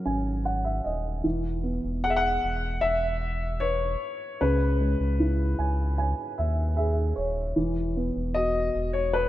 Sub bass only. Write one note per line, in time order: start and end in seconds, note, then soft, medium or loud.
0.06 0.81 G#1 medium
0.86 1.22 D#1 medium
1.25 1.80 E1 medium
1.84 2.39 E1 medium
2.44 2.80 E1 medium
2.82 3.96 E1 medium
4.41 4.96 C#2 loud
5.00 5.55 C#2 medium
5.59 6.14 C#2 medium
6.39 7.13 D#2 medium
7.17 7.54 D#1 medium
7.57 8.12 E1 medium
8.16 8.71 E1 medium
8.75 9.29 E1 medium